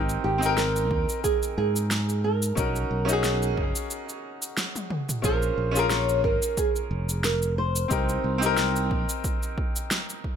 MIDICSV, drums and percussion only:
0, 0, Header, 1, 2, 480
1, 0, Start_track
1, 0, Tempo, 666667
1, 1854, Time_signature, 4, 2, 24, 8
1, 7461, End_track
2, 0, Start_track
2, 0, Title_t, "Drums"
2, 66, Note_on_c, 9, 69, 31
2, 138, Note_off_c, 9, 69, 0
2, 307, Note_on_c, 9, 69, 63
2, 379, Note_off_c, 9, 69, 0
2, 415, Note_on_c, 9, 38, 99
2, 416, Note_on_c, 9, 69, 50
2, 487, Note_off_c, 9, 38, 0
2, 488, Note_off_c, 9, 69, 0
2, 547, Note_on_c, 9, 69, 30
2, 619, Note_off_c, 9, 69, 0
2, 654, Note_on_c, 9, 36, 103
2, 726, Note_off_c, 9, 36, 0
2, 786, Note_on_c, 9, 69, 59
2, 858, Note_off_c, 9, 69, 0
2, 894, Note_on_c, 9, 36, 107
2, 895, Note_on_c, 9, 69, 51
2, 966, Note_off_c, 9, 36, 0
2, 967, Note_off_c, 9, 69, 0
2, 1027, Note_on_c, 9, 69, 31
2, 1099, Note_off_c, 9, 69, 0
2, 1267, Note_on_c, 9, 69, 57
2, 1339, Note_off_c, 9, 69, 0
2, 1374, Note_on_c, 9, 38, 94
2, 1375, Note_on_c, 9, 69, 51
2, 1446, Note_off_c, 9, 38, 0
2, 1447, Note_off_c, 9, 69, 0
2, 1507, Note_on_c, 9, 69, 31
2, 1579, Note_off_c, 9, 69, 0
2, 1745, Note_on_c, 9, 69, 59
2, 1817, Note_off_c, 9, 69, 0
2, 1853, Note_on_c, 9, 69, 48
2, 1854, Note_on_c, 9, 36, 106
2, 1925, Note_off_c, 9, 69, 0
2, 1926, Note_off_c, 9, 36, 0
2, 1985, Note_on_c, 9, 69, 31
2, 2057, Note_off_c, 9, 69, 0
2, 2225, Note_on_c, 9, 69, 60
2, 2297, Note_off_c, 9, 69, 0
2, 2331, Note_on_c, 9, 38, 90
2, 2332, Note_on_c, 9, 69, 53
2, 2403, Note_off_c, 9, 38, 0
2, 2404, Note_off_c, 9, 69, 0
2, 2466, Note_on_c, 9, 69, 29
2, 2538, Note_off_c, 9, 69, 0
2, 2574, Note_on_c, 9, 36, 99
2, 2646, Note_off_c, 9, 36, 0
2, 2704, Note_on_c, 9, 69, 60
2, 2776, Note_off_c, 9, 69, 0
2, 2812, Note_on_c, 9, 69, 51
2, 2884, Note_off_c, 9, 69, 0
2, 2945, Note_on_c, 9, 69, 31
2, 3017, Note_off_c, 9, 69, 0
2, 3183, Note_on_c, 9, 69, 58
2, 3255, Note_off_c, 9, 69, 0
2, 3293, Note_on_c, 9, 38, 94
2, 3295, Note_on_c, 9, 69, 52
2, 3365, Note_off_c, 9, 38, 0
2, 3367, Note_off_c, 9, 69, 0
2, 3424, Note_on_c, 9, 48, 54
2, 3425, Note_on_c, 9, 69, 31
2, 3496, Note_off_c, 9, 48, 0
2, 3497, Note_off_c, 9, 69, 0
2, 3531, Note_on_c, 9, 47, 70
2, 3603, Note_off_c, 9, 47, 0
2, 3665, Note_on_c, 9, 45, 77
2, 3666, Note_on_c, 9, 69, 63
2, 3737, Note_off_c, 9, 45, 0
2, 3738, Note_off_c, 9, 69, 0
2, 3773, Note_on_c, 9, 69, 57
2, 3774, Note_on_c, 9, 36, 117
2, 3845, Note_off_c, 9, 69, 0
2, 3846, Note_off_c, 9, 36, 0
2, 3905, Note_on_c, 9, 69, 33
2, 3977, Note_off_c, 9, 69, 0
2, 4145, Note_on_c, 9, 69, 71
2, 4217, Note_off_c, 9, 69, 0
2, 4250, Note_on_c, 9, 38, 105
2, 4251, Note_on_c, 9, 69, 56
2, 4322, Note_off_c, 9, 38, 0
2, 4323, Note_off_c, 9, 69, 0
2, 4385, Note_on_c, 9, 69, 33
2, 4457, Note_off_c, 9, 69, 0
2, 4494, Note_on_c, 9, 36, 114
2, 4566, Note_off_c, 9, 36, 0
2, 4625, Note_on_c, 9, 69, 69
2, 4697, Note_off_c, 9, 69, 0
2, 4734, Note_on_c, 9, 36, 115
2, 4734, Note_on_c, 9, 69, 57
2, 4806, Note_off_c, 9, 36, 0
2, 4806, Note_off_c, 9, 69, 0
2, 4866, Note_on_c, 9, 69, 33
2, 4938, Note_off_c, 9, 69, 0
2, 5106, Note_on_c, 9, 69, 66
2, 5178, Note_off_c, 9, 69, 0
2, 5214, Note_on_c, 9, 38, 107
2, 5215, Note_on_c, 9, 69, 56
2, 5286, Note_off_c, 9, 38, 0
2, 5287, Note_off_c, 9, 69, 0
2, 5345, Note_on_c, 9, 69, 34
2, 5417, Note_off_c, 9, 69, 0
2, 5586, Note_on_c, 9, 69, 65
2, 5658, Note_off_c, 9, 69, 0
2, 5694, Note_on_c, 9, 36, 127
2, 5694, Note_on_c, 9, 69, 55
2, 5766, Note_off_c, 9, 36, 0
2, 5766, Note_off_c, 9, 69, 0
2, 5825, Note_on_c, 9, 69, 36
2, 5897, Note_off_c, 9, 69, 0
2, 6066, Note_on_c, 9, 69, 65
2, 6138, Note_off_c, 9, 69, 0
2, 6173, Note_on_c, 9, 38, 104
2, 6174, Note_on_c, 9, 69, 55
2, 6245, Note_off_c, 9, 38, 0
2, 6246, Note_off_c, 9, 69, 0
2, 6307, Note_on_c, 9, 69, 34
2, 6379, Note_off_c, 9, 69, 0
2, 6415, Note_on_c, 9, 36, 111
2, 6487, Note_off_c, 9, 36, 0
2, 6546, Note_on_c, 9, 69, 66
2, 6618, Note_off_c, 9, 69, 0
2, 6655, Note_on_c, 9, 36, 123
2, 6655, Note_on_c, 9, 69, 56
2, 6727, Note_off_c, 9, 36, 0
2, 6727, Note_off_c, 9, 69, 0
2, 6787, Note_on_c, 9, 69, 34
2, 6859, Note_off_c, 9, 69, 0
2, 6895, Note_on_c, 9, 36, 111
2, 6967, Note_off_c, 9, 36, 0
2, 7026, Note_on_c, 9, 69, 66
2, 7098, Note_off_c, 9, 69, 0
2, 7135, Note_on_c, 9, 38, 112
2, 7136, Note_on_c, 9, 69, 59
2, 7207, Note_off_c, 9, 38, 0
2, 7208, Note_off_c, 9, 69, 0
2, 7269, Note_on_c, 9, 69, 34
2, 7341, Note_off_c, 9, 69, 0
2, 7375, Note_on_c, 9, 36, 60
2, 7447, Note_off_c, 9, 36, 0
2, 7461, End_track
0, 0, End_of_file